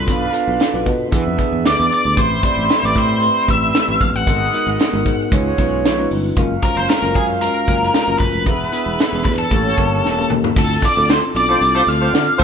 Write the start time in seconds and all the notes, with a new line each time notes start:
Already playing: B4
0.06 B1 B3 D4 F4 A4 B4 F5, kick, closed hi-hat
0.32 B3 D4 F4 A4 B4, closed hi-hat
0.48 B1
0.60 snare, closed hi-hat
0.73 B1 B3 D4 F4 A4 B4
0.86 B2, kick, closed hi-hat
1.11 E3 B3 D4 E4 G#4 B4 E5, kick, closed hi-hat
1.27 F2
1.37 B3 D4 E4 G#4 B4, kick, closed hi-hat
1.52 E2
1.65 D2 D5, snare, closed hi-hat
1.79 E2 B3 D4 E4 G#4 B4
1.91 D5, closed hi-hat
2.05 D2
2.16 A1 A3 C4 E4 G4 B4 C5 E5 B5, kick, closed hi-hat
2.43 A3 C4 E4 G4 C5 D5, kick, closed hi-hat
2.57 A1
2.69 snare, closed hi-hat
2.83 A1 A3 C4 E4 G4 B4 D5
2.96 A2 C5, kick, closed hi-hat
3.22 A3 C4 E4 G4 B4, closed hi-hat
3.48 A1 A3 C4 E4 G4 B4 E5, kick, closed hi-hat
3.75 snare, closed hi-hat
3.88 A1 A3 C4 E4 G4 B4
4.01 A#1 F5, kick, closed hi-hat
4.14 A1 F#5
4.26 G#1 G#3 B3 D#4 F#4 G#4 A#4 D#5, kick, closed hi-hat
4.53 G#3 B3 D#4 F#4 A#4, closed hi-hat
4.67 G#1
4.79 snare, closed hi-hat
4.92 G#1 G#3 B3 D#4 F#4 A#4
5.06 G#2, kick, closed hi-hat
5.31 C#2 G#3 C#4 D#4 F4 B4 C#5, kick, closed hi-hat
5.58 B1 G#3 C#4 D#4 F4 B4, kick, closed hi-hat
5.85 A#1, snare, closed hi-hat
5.98 G#3 C#4 D#4 F4 B4
6.10 G1, open hi-hat
6.36 F#1 G#3 C#4 F4 F#4 A#4 F5, kick, closed hi-hat
6.62 G#3 C#4 F4 F#4 A#4 C5, kick, closed hi-hat
6.77 F#1 C5
6.89 A#4, snare, closed hi-hat
7.02 F#1 G#3 C#4 F4 F#4 A#4
7.15 F#2 G#4, kick, closed hi-hat
7.41 G#3 C#4 F4 F#4 A#4, closed hi-hat
7.67 F#1 G#3 C#4 F4 F#4 A#4, kick, closed hi-hat
7.83 snare
7.94 snare, closed hi-hat
8.07 F#1 G#3 C#4 F4 F#4 A#4
8.19 F#1 B4, kick, open hi-hat
8.33 F1
8.45 E1 B3 D4 E4 G#4 B4 E5, kick, closed hi-hat
8.72 B3 D4 E4 G#4 B4, closed hi-hat
8.86 E1
8.99 snare, closed hi-hat
9.12 E1 B3 D4 E4 G#4 B4, snare
9.25 E2 B4, kick, open hi-hat
9.39 A4
9.51 A1 A#3 C#4 E4 G4 A4 C#5, kick, closed hi-hat
9.77 G1 A#3 C#4 E4 G4 A#4, kick, closed hi-hat
10.04 E1, snare
10.18 A#3 C#4 E4 G4 A4, high tom
10.30 D#2, mid tom
10.44 floor tom
10.56 D2 C4 D4 E4 F4 A4, kick, crash
10.82 D5, kick, closed hi-hat
10.97 D2 C4 D4 E4 F4 A4
11.09 C5, snare, closed hi-hat
11.35 B1 C4 D4 E4 F4 A4 D5, closed hi-hat
11.49 A3 C4 D4 E4 F4 A4 C5
11.61 C2, closed hi-hat
11.75 A3 C4 F4 C5
11.87 D2 C4 D4 F4 A4 F5, snare, closed hi-hat
12.01 A3 C4 F4 C5
12.13 D3, snare, closed hi-hat
12.38 D2 A3 C4 F4 C5 E5, kick, closed hi-hat